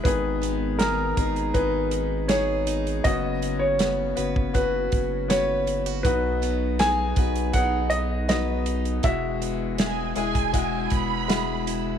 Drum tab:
HH |x-x-x-xxx-x-x-xx|x-x-x-x-x-x-x-xx|x-x-x-xxx-x-x-xx|x-x-x-xxx-x-x-x-|
SD |----o-------o---|----o-------o---|----o-------o---|----o-------o---|
BD |o-----o-o-------|o------oo-o-----|o-----o-o-------|o------oo-o-----|